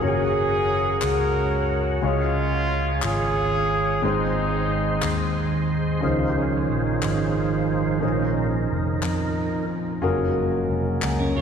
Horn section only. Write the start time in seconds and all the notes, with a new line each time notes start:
0.04 C#4 G#4
1.05 C#4 F#4 A#4
2.04 G#3 C#4 F4
3.05 C#4 F4 G#4
4.04 G#3 C4 D#4